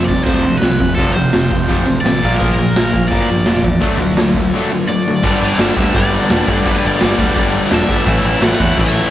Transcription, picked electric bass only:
0, 0, Header, 1, 2, 480
1, 0, Start_track
1, 0, Tempo, 354820
1, 1316, Time_signature, 4, 2, 24, 8
1, 12315, End_track
2, 0, Start_track
2, 0, Title_t, "Picked electric bass"
2, 0, Program_c, 0, 34
2, 115, Note_on_c, 0, 29, 84
2, 327, Note_off_c, 0, 29, 0
2, 361, Note_on_c, 0, 38, 87
2, 571, Note_off_c, 0, 38, 0
2, 580, Note_on_c, 0, 38, 90
2, 800, Note_off_c, 0, 38, 0
2, 853, Note_on_c, 0, 36, 83
2, 1058, Note_off_c, 0, 36, 0
2, 1086, Note_on_c, 0, 29, 82
2, 1294, Note_off_c, 0, 29, 0
2, 1323, Note_on_c, 0, 29, 97
2, 1534, Note_off_c, 0, 29, 0
2, 1564, Note_on_c, 0, 29, 85
2, 1774, Note_off_c, 0, 29, 0
2, 1812, Note_on_c, 0, 29, 80
2, 2019, Note_off_c, 0, 29, 0
2, 2046, Note_on_c, 0, 29, 80
2, 2256, Note_off_c, 0, 29, 0
2, 2288, Note_on_c, 0, 29, 89
2, 2498, Note_off_c, 0, 29, 0
2, 2544, Note_on_c, 0, 38, 90
2, 2747, Note_off_c, 0, 38, 0
2, 2762, Note_on_c, 0, 33, 85
2, 2975, Note_off_c, 0, 33, 0
2, 3025, Note_on_c, 0, 34, 80
2, 3228, Note_off_c, 0, 34, 0
2, 3261, Note_on_c, 0, 34, 94
2, 3466, Note_off_c, 0, 34, 0
2, 3493, Note_on_c, 0, 34, 87
2, 3702, Note_off_c, 0, 34, 0
2, 3748, Note_on_c, 0, 34, 88
2, 3951, Note_off_c, 0, 34, 0
2, 3984, Note_on_c, 0, 34, 88
2, 4189, Note_off_c, 0, 34, 0
2, 4215, Note_on_c, 0, 31, 90
2, 4424, Note_off_c, 0, 31, 0
2, 4481, Note_on_c, 0, 31, 83
2, 4679, Note_off_c, 0, 31, 0
2, 4699, Note_on_c, 0, 29, 85
2, 4907, Note_off_c, 0, 29, 0
2, 4925, Note_on_c, 0, 40, 84
2, 5139, Note_off_c, 0, 40, 0
2, 5163, Note_on_c, 0, 38, 86
2, 5371, Note_off_c, 0, 38, 0
2, 5380, Note_on_c, 0, 38, 92
2, 5605, Note_off_c, 0, 38, 0
2, 5640, Note_on_c, 0, 38, 79
2, 5857, Note_off_c, 0, 38, 0
2, 5876, Note_on_c, 0, 38, 82
2, 6095, Note_off_c, 0, 38, 0
2, 7093, Note_on_c, 0, 31, 102
2, 7238, Note_off_c, 0, 31, 0
2, 7317, Note_on_c, 0, 31, 98
2, 7467, Note_off_c, 0, 31, 0
2, 7562, Note_on_c, 0, 31, 88
2, 7710, Note_off_c, 0, 31, 0
2, 7806, Note_on_c, 0, 38, 99
2, 7953, Note_off_c, 0, 38, 0
2, 8053, Note_on_c, 0, 31, 101
2, 8344, Note_off_c, 0, 31, 0
2, 8516, Note_on_c, 0, 28, 92
2, 8665, Note_off_c, 0, 28, 0
2, 8764, Note_on_c, 0, 31, 93
2, 8911, Note_off_c, 0, 31, 0
2, 9009, Note_on_c, 0, 31, 100
2, 9154, Note_off_c, 0, 31, 0
2, 9267, Note_on_c, 0, 31, 96
2, 9405, Note_off_c, 0, 31, 0
2, 9496, Note_on_c, 0, 31, 94
2, 9638, Note_off_c, 0, 31, 0
2, 9711, Note_on_c, 0, 38, 101
2, 9860, Note_off_c, 0, 38, 0
2, 9960, Note_on_c, 0, 31, 91
2, 10253, Note_off_c, 0, 31, 0
2, 10435, Note_on_c, 0, 28, 95
2, 10582, Note_off_c, 0, 28, 0
2, 10676, Note_on_c, 0, 31, 91
2, 10823, Note_off_c, 0, 31, 0
2, 10913, Note_on_c, 0, 33, 108
2, 11060, Note_off_c, 0, 33, 0
2, 11156, Note_on_c, 0, 33, 101
2, 11302, Note_off_c, 0, 33, 0
2, 11381, Note_on_c, 0, 33, 93
2, 11531, Note_off_c, 0, 33, 0
2, 11634, Note_on_c, 0, 40, 95
2, 11779, Note_off_c, 0, 40, 0
2, 11879, Note_on_c, 0, 33, 106
2, 12169, Note_off_c, 0, 33, 0
2, 12315, End_track
0, 0, End_of_file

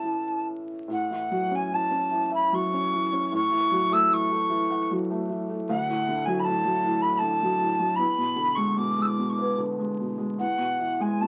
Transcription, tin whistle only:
0, 0, Header, 1, 2, 480
1, 0, Start_track
1, 0, Key_signature, 3, "major"
1, 0, Tempo, 868307
1, 491, Time_signature, 3, 2, 24, 8
1, 491, Tempo, 817439
1, 1931, Tempo, 784314
1, 3371, Tempo, 770218
1, 5291, Tempo, 808625
1, 6772, End_track
2, 0, Start_track
2, 0, Title_t, "Tin whistle"
2, 0, Program_c, 0, 75
2, 0, Note_on_c, 0, 81, 67
2, 256, Note_off_c, 0, 81, 0
2, 510, Note_on_c, 0, 78, 63
2, 878, Note_on_c, 0, 80, 62
2, 887, Note_off_c, 0, 78, 0
2, 987, Note_on_c, 0, 81, 71
2, 995, Note_off_c, 0, 80, 0
2, 1338, Note_off_c, 0, 81, 0
2, 1341, Note_on_c, 0, 83, 71
2, 1461, Note_on_c, 0, 85, 74
2, 1470, Note_off_c, 0, 83, 0
2, 1928, Note_off_c, 0, 85, 0
2, 1932, Note_on_c, 0, 85, 91
2, 2289, Note_on_c, 0, 88, 87
2, 2298, Note_off_c, 0, 85, 0
2, 2412, Note_on_c, 0, 85, 85
2, 2421, Note_off_c, 0, 88, 0
2, 2893, Note_off_c, 0, 85, 0
2, 3367, Note_on_c, 0, 78, 86
2, 3717, Note_on_c, 0, 80, 79
2, 3726, Note_off_c, 0, 78, 0
2, 3803, Note_on_c, 0, 83, 57
2, 3813, Note_off_c, 0, 80, 0
2, 3831, Note_on_c, 0, 81, 94
2, 3840, Note_off_c, 0, 83, 0
2, 4192, Note_on_c, 0, 83, 82
2, 4202, Note_off_c, 0, 81, 0
2, 4293, Note_on_c, 0, 81, 85
2, 4302, Note_off_c, 0, 83, 0
2, 4778, Note_on_c, 0, 83, 84
2, 4788, Note_off_c, 0, 81, 0
2, 5150, Note_on_c, 0, 85, 82
2, 5160, Note_off_c, 0, 83, 0
2, 5287, Note_on_c, 0, 86, 74
2, 5296, Note_off_c, 0, 85, 0
2, 5432, Note_on_c, 0, 88, 48
2, 5441, Note_off_c, 0, 86, 0
2, 5458, Note_on_c, 0, 86, 76
2, 5467, Note_off_c, 0, 88, 0
2, 5597, Note_on_c, 0, 85, 49
2, 5605, Note_off_c, 0, 86, 0
2, 5605, Note_on_c, 0, 86, 73
2, 5614, Note_off_c, 0, 85, 0
2, 5767, Note_off_c, 0, 86, 0
2, 6247, Note_on_c, 0, 78, 65
2, 6617, Note_on_c, 0, 80, 64
2, 6626, Note_off_c, 0, 78, 0
2, 6730, Note_on_c, 0, 81, 75
2, 6739, Note_off_c, 0, 80, 0
2, 6772, Note_off_c, 0, 81, 0
2, 6772, End_track
0, 0, End_of_file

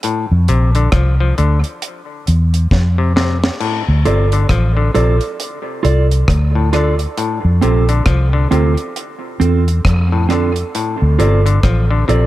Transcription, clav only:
0, 0, Header, 1, 2, 480
1, 0, Start_track
1, 0, Tempo, 892326
1, 23, Time_signature, 4, 2, 24, 8
1, 6598, End_track
2, 0, Start_track
2, 0, Title_t, "Clav"
2, 0, Program_c, 0, 7
2, 22, Note_on_c, 0, 45, 78
2, 138, Note_off_c, 0, 45, 0
2, 262, Note_on_c, 0, 48, 76
2, 378, Note_off_c, 0, 48, 0
2, 405, Note_on_c, 0, 50, 75
2, 483, Note_off_c, 0, 50, 0
2, 502, Note_on_c, 0, 53, 83
2, 618, Note_off_c, 0, 53, 0
2, 648, Note_on_c, 0, 53, 77
2, 724, Note_off_c, 0, 53, 0
2, 742, Note_on_c, 0, 50, 75
2, 858, Note_off_c, 0, 50, 0
2, 1604, Note_on_c, 0, 48, 70
2, 1682, Note_off_c, 0, 48, 0
2, 1700, Note_on_c, 0, 48, 77
2, 1817, Note_off_c, 0, 48, 0
2, 1939, Note_on_c, 0, 45, 83
2, 2056, Note_off_c, 0, 45, 0
2, 2181, Note_on_c, 0, 48, 74
2, 2297, Note_off_c, 0, 48, 0
2, 2329, Note_on_c, 0, 50, 72
2, 2405, Note_off_c, 0, 50, 0
2, 2424, Note_on_c, 0, 53, 87
2, 2539, Note_off_c, 0, 53, 0
2, 2564, Note_on_c, 0, 50, 75
2, 2642, Note_off_c, 0, 50, 0
2, 2660, Note_on_c, 0, 48, 74
2, 2777, Note_off_c, 0, 48, 0
2, 3526, Note_on_c, 0, 45, 72
2, 3602, Note_off_c, 0, 45, 0
2, 3620, Note_on_c, 0, 50, 77
2, 3736, Note_off_c, 0, 50, 0
2, 3860, Note_on_c, 0, 45, 82
2, 3977, Note_off_c, 0, 45, 0
2, 4102, Note_on_c, 0, 48, 79
2, 4217, Note_off_c, 0, 48, 0
2, 4243, Note_on_c, 0, 50, 74
2, 4321, Note_off_c, 0, 50, 0
2, 4340, Note_on_c, 0, 53, 88
2, 4456, Note_off_c, 0, 53, 0
2, 4482, Note_on_c, 0, 50, 76
2, 4560, Note_off_c, 0, 50, 0
2, 4579, Note_on_c, 0, 48, 80
2, 4696, Note_off_c, 0, 48, 0
2, 5446, Note_on_c, 0, 45, 74
2, 5522, Note_off_c, 0, 45, 0
2, 5542, Note_on_c, 0, 50, 79
2, 5657, Note_off_c, 0, 50, 0
2, 5783, Note_on_c, 0, 45, 79
2, 5898, Note_off_c, 0, 45, 0
2, 6019, Note_on_c, 0, 48, 77
2, 6136, Note_off_c, 0, 48, 0
2, 6163, Note_on_c, 0, 50, 76
2, 6241, Note_off_c, 0, 50, 0
2, 6259, Note_on_c, 0, 53, 88
2, 6376, Note_off_c, 0, 53, 0
2, 6404, Note_on_c, 0, 50, 81
2, 6482, Note_off_c, 0, 50, 0
2, 6498, Note_on_c, 0, 48, 76
2, 6598, Note_off_c, 0, 48, 0
2, 6598, End_track
0, 0, End_of_file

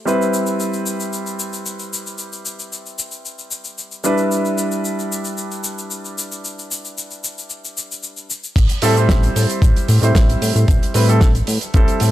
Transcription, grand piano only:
0, 0, Header, 1, 2, 480
1, 0, Start_track
1, 0, Key_signature, 0, "minor"
1, 0, Tempo, 530973
1, 58, Time_signature, 4, 2, 24, 8
1, 10951, End_track
2, 0, Start_track
2, 0, Title_t, "Grand piano"
2, 0, Program_c, 0, 0
2, 49, Note_on_c, 0, 55, 68
2, 56, Note_on_c, 0, 60, 63
2, 63, Note_on_c, 0, 64, 62
2, 69, Note_on_c, 0, 71, 74
2, 3625, Note_off_c, 0, 55, 0
2, 3629, Note_off_c, 0, 60, 0
2, 3633, Note_off_c, 0, 64, 0
2, 3636, Note_off_c, 0, 71, 0
2, 3650, Note_on_c, 0, 55, 70
2, 3656, Note_on_c, 0, 62, 63
2, 3660, Note_on_c, 0, 64, 66
2, 3666, Note_on_c, 0, 71, 78
2, 7466, Note_off_c, 0, 55, 0
2, 7469, Note_off_c, 0, 62, 0
2, 7471, Note_off_c, 0, 64, 0
2, 7474, Note_off_c, 0, 71, 0
2, 7975, Note_on_c, 0, 55, 92
2, 7976, Note_on_c, 0, 60, 84
2, 7979, Note_on_c, 0, 64, 85
2, 7982, Note_on_c, 0, 69, 101
2, 8070, Note_off_c, 0, 55, 0
2, 8071, Note_off_c, 0, 60, 0
2, 8072, Note_off_c, 0, 64, 0
2, 8074, Note_off_c, 0, 69, 0
2, 8092, Note_on_c, 0, 55, 76
2, 8099, Note_on_c, 0, 60, 72
2, 8104, Note_on_c, 0, 64, 73
2, 8112, Note_on_c, 0, 72, 84
2, 9027, Note_off_c, 0, 55, 0
2, 9030, Note_off_c, 0, 60, 0
2, 9033, Note_off_c, 0, 64, 0
2, 9037, Note_off_c, 0, 72, 0
2, 9053, Note_on_c, 0, 55, 74
2, 9061, Note_on_c, 0, 60, 67
2, 9066, Note_on_c, 0, 64, 70
2, 9072, Note_on_c, 0, 72, 81
2, 9866, Note_off_c, 0, 55, 0
2, 9869, Note_off_c, 0, 60, 0
2, 9872, Note_off_c, 0, 64, 0
2, 9875, Note_off_c, 0, 72, 0
2, 9892, Note_on_c, 0, 55, 79
2, 9895, Note_on_c, 0, 60, 73
2, 9899, Note_on_c, 0, 64, 71
2, 9901, Note_on_c, 0, 71, 85
2, 9993, Note_off_c, 0, 55, 0
2, 9995, Note_off_c, 0, 60, 0
2, 9997, Note_off_c, 0, 64, 0
2, 9998, Note_off_c, 0, 71, 0
2, 10021, Note_on_c, 0, 55, 83
2, 10024, Note_on_c, 0, 60, 75
2, 10027, Note_on_c, 0, 64, 76
2, 10030, Note_on_c, 0, 69, 90
2, 10170, Note_off_c, 0, 55, 0
2, 10172, Note_off_c, 0, 60, 0
2, 10174, Note_off_c, 0, 64, 0
2, 10175, Note_off_c, 0, 69, 0
2, 10613, Note_on_c, 0, 55, 82
2, 10618, Note_on_c, 0, 60, 75
2, 10625, Note_on_c, 0, 64, 77
2, 10630, Note_on_c, 0, 69, 92
2, 10951, Note_off_c, 0, 55, 0
2, 10951, Note_off_c, 0, 60, 0
2, 10951, Note_off_c, 0, 64, 0
2, 10951, Note_off_c, 0, 69, 0
2, 10951, End_track
0, 0, End_of_file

